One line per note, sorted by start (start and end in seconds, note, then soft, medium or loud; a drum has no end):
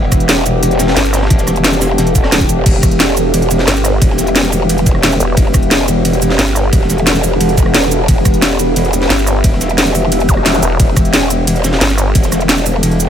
0.00 0.10 E1 loud
0.00 13.09 B3 medium
0.00 13.09 G4 medium
0.00 2.65 A4 medium
0.12 0.61 E1 loud
0.12 kick loud
0.12 cross-stick medium
0.12 closed hi-hat medium
0.12 ride medium
0.12 cabasa medium
0.20 closed hi-hat soft
0.29 snare loud
0.29 closed hi-hat medium
0.29 ride medium
0.46 closed hi-hat medium
0.46 ride medium
0.46 cabasa medium
0.63 0.95 E1 medium
0.63 closed hi-hat loud
0.63 ride loud
0.71 closed hi-hat soft
0.79 snare loud
0.79 closed hi-hat medium
0.79 ride medium
0.79 cabasa medium
0.88 snare soft
0.88 snare loud
0.88 ride medium
0.96 1.29 G1 loud
0.96 snare loud
0.96 closed hi-hat loud
0.96 ride medium
1.05 cabasa soft
1.13 cross-stick medium
1.13 snare medium
1.13 closed hi-hat medium
1.13 ride medium
1.13 cabasa medium
1.18 snare medium
1.18 ride medium
1.22 snare medium
1.22 ride medium
1.26 snare medium
1.26 ride medium
1.30 1.46 E1 loud
1.30 kick loud
1.30 closed hi-hat medium
1.30 ride medium
1.39 snare soft
1.39 closed hi-hat soft
1.39 cabasa soft
1.47 1.97 E1 loud
1.47 cross-stick medium
1.47 snare medium
1.47 closed hi-hat medium
1.47 ride medium
1.47 cabasa medium
1.56 closed hi-hat soft
1.64 snare loud
1.64 closed hi-hat loud
1.64 ride medium
1.73 snare soft
1.73 cabasa soft
1.81 snare loud
1.81 open hi-hat medium
1.81 ride medium
1.81 cabasa medium
1.98 2.48 E1 loud
1.98 snare loud
1.98 closed hi-hat loud
1.98 ride medium
2.07 closed hi-hat soft
2.15 kick loud
2.15 closed hi-hat medium
2.15 ride medium
2.15 cabasa medium
2.24 cross-stick medium
2.24 snare loud
2.24 ride medium
2.32 snare loud
2.32 closed hi-hat loud
2.41 kick medium
2.41 cabasa soft
2.49 2.65 E1 medium
2.49 closed hi-hat medium
2.49 ride medium
2.49 cabasa medium
2.66 2.82 E1 loud
2.66 5.36 E5 medium
2.66 kick loud
2.66 closed hi-hat loud
2.66 crash medium
2.66 ride medium
2.82 3.32 E1 loud
2.82 kick loud
2.82 cross-stick medium
2.82 closed hi-hat medium
2.82 ride medium
2.82 cabasa medium
2.91 closed hi-hat soft
3.00 snare loud
3.00 closed hi-hat loud
3.00 ride medium
3.17 closed hi-hat medium
3.17 ride medium
3.17 cabasa medium
3.34 3.66 E1 medium
3.34 closed hi-hat loud
3.34 ride medium
3.42 closed hi-hat soft
3.51 closed hi-hat medium
3.51 ride medium
3.51 cabasa medium
3.59 snare soft
3.67 4.00 G1 loud
3.67 snare loud
3.67 closed hi-hat loud
3.67 ride loud
3.67 ride medium
3.76 cabasa soft
3.84 cross-stick medium
3.84 snare soft
3.84 closed hi-hat medium
3.84 ride medium
3.84 cabasa medium
3.93 ride soft
4.01 4.17 E1 medium
4.01 kick loud
4.01 closed hi-hat loud
4.01 ride medium
4.10 snare soft
4.18 4.68 E1 loud
4.18 snare medium
4.18 closed hi-hat medium
4.18 ride medium
4.18 cabasa medium
4.27 closed hi-hat soft
4.36 snare loud
4.36 closed hi-hat loud
4.36 ride medium
4.36 ride loud
4.44 snare soft
4.44 cabasa soft
4.52 open hi-hat medium
4.52 ride medium
4.52 cabasa medium
4.69 5.19 E1 medium
4.69 closed hi-hat loud
4.69 ride medium
4.78 closed hi-hat soft
4.86 kick loud
4.86 closed hi-hat medium
4.86 ride medium
4.86 cabasa medium
4.95 cross-stick medium
5.03 snare loud
5.03 closed hi-hat medium
5.03 ride loud
5.03 ride medium
5.12 cabasa soft
5.20 5.36 E1 medium
5.20 closed hi-hat medium
5.20 ride medium
5.20 cabasa medium
5.37 5.53 E1 loud
5.37 8.07 A4 medium
5.37 kick loud
5.37 closed hi-hat medium
5.37 ride medium
5.53 6.04 E1 loud
5.53 kick loud
5.53 cross-stick medium
5.53 closed hi-hat medium
5.53 ride medium
5.53 cabasa medium
5.63 closed hi-hat soft
5.71 snare loud
5.71 closed hi-hat loud
5.71 ride medium
5.88 closed hi-hat medium
5.88 ride medium
5.88 cabasa medium
6.05 6.38 E1 loud
6.05 closed hi-hat loud
6.05 ride medium
6.13 closed hi-hat soft
6.22 closed hi-hat medium
6.22 ride medium
6.22 cabasa medium
6.30 snare soft
6.39 6.71 G1 loud
6.39 snare loud
6.39 closed hi-hat medium
6.39 ride medium
6.47 cabasa soft
6.55 cross-stick medium
6.55 snare soft
6.55 closed hi-hat medium
6.55 ride medium
6.55 cabasa medium
6.64 ride soft
6.72 6.88 E1 loud
6.72 kick loud
6.72 closed hi-hat medium
6.72 ride loud
6.72 ride medium
6.81 snare soft
6.89 7.39 E1 loud
6.89 snare medium
6.89 closed hi-hat medium
6.89 ride medium
6.89 cabasa medium
6.98 closed hi-hat soft
7.07 snare loud
7.07 closed hi-hat medium
7.07 ride medium
7.15 snare soft
7.15 cabasa soft
7.23 open hi-hat medium
7.23 ride medium
7.23 cabasa medium
7.40 8.07 E1 medium
7.40 closed hi-hat medium
7.40 ride loud
7.40 ride medium
7.49 closed hi-hat soft
7.57 kick loud
7.57 closed hi-hat medium
7.57 ride medium
7.57 cabasa medium
7.66 cross-stick medium
7.74 snare loud
7.74 closed hi-hat medium
7.74 ride medium
7.83 cabasa soft
7.91 closed hi-hat medium
7.91 ride medium
7.91 cabasa medium
8.08 8.24 E1 loud
8.08 10.79 E5 medium
8.08 kick loud
8.08 closed hi-hat medium
8.08 ride medium
8.25 8.75 E1 loud
8.25 kick loud
8.25 cross-stick medium
8.25 closed hi-hat medium
8.25 ride medium
8.25 cabasa medium
8.34 closed hi-hat soft
8.42 snare loud
8.42 closed hi-hat medium
8.42 ride medium
8.59 closed hi-hat medium
8.59 ride medium
8.59 cabasa medium
8.76 9.09 E1 medium
8.76 closed hi-hat medium
8.76 ride medium
8.85 closed hi-hat soft
8.93 closed hi-hat medium
8.93 ride medium
8.93 cabasa medium
9.02 snare soft
9.10 9.43 G1 loud
9.10 snare loud
9.10 closed hi-hat medium
9.10 ride medium
9.19 cabasa soft
9.26 cross-stick medium
9.26 snare soft
9.26 closed hi-hat medium
9.26 ride medium
9.26 cabasa medium
9.36 ride soft
9.44 9.60 E1 loud
9.44 kick loud
9.44 closed hi-hat medium
9.44 ride loud
9.44 ride medium
9.52 snare soft
9.60 10.10 E1 medium
9.60 snare medium
9.60 closed hi-hat medium
9.60 ride medium
9.60 cabasa medium
9.69 closed hi-hat soft
9.78 snare loud
9.78 closed hi-hat medium
9.78 ride medium
9.86 snare soft
9.86 cabasa soft
9.95 open hi-hat medium
9.95 ride medium
9.95 cabasa medium
10.12 10.61 E1 medium
10.12 closed hi-hat medium
10.12 ride medium
10.20 closed hi-hat soft
10.28 kick loud
10.28 closed hi-hat medium
10.28 ride medium
10.28 zap medium
10.28 cabasa medium
10.37 cross-stick medium
10.45 snare loud
10.45 closed hi-hat medium
10.45 ride medium
10.54 cabasa soft
10.62 10.78 E1 loud
10.62 closed hi-hat medium
10.62 ride medium
10.62 cabasa medium
10.79 10.95 E1 loud
10.79 13.09 A4 medium
10.79 kick loud
10.79 closed hi-hat loud
10.79 ride medium
10.96 11.46 E1 loud
10.96 kick loud
10.96 cross-stick medium
10.96 closed hi-hat medium
10.96 ride medium
10.96 cabasa medium
11.05 closed hi-hat soft
11.13 snare loud
11.13 closed hi-hat loud
11.13 ride medium
11.30 closed hi-hat medium
11.30 ride medium
11.30 cabasa medium
11.47 11.80 E1 medium
11.47 closed hi-hat loud
11.47 ride medium
11.56 closed hi-hat soft
11.64 snare loud
11.64 closed hi-hat medium
11.64 ride medium
11.64 cabasa medium
11.73 snare soft
11.73 snare loud
11.73 ride medium
11.81 12.14 G1 loud
11.81 snare loud
11.81 closed hi-hat medium
11.81 ride medium
11.89 snare loud
11.89 ride medium
11.89 cabasa soft
11.98 cross-stick medium
11.98 snare soft
11.98 closed hi-hat medium
11.98 ride medium
11.98 cabasa medium
12.07 ride soft
12.15 12.31 E1 loud
12.15 kick loud
12.15 closed hi-hat medium
12.15 ride medium
12.24 snare soft
12.24 closed hi-hat soft
12.24 cabasa soft
12.32 12.82 E1 medium
12.32 cross-stick medium
12.32 snare medium
12.32 closed hi-hat medium
12.32 ride medium
12.32 cabasa medium
12.41 closed hi-hat soft
12.49 snare loud
12.49 closed hi-hat loud
12.49 ride medium
12.49 ride loud
12.58 snare soft
12.58 cabasa soft
12.66 open hi-hat medium
12.66 ride medium
12.66 cabasa medium
12.83 13.09 E1 medium
12.83 closed hi-hat loud
12.83 ride medium
12.91 closed hi-hat soft
13.00 closed hi-hat medium
13.00 cabasa medium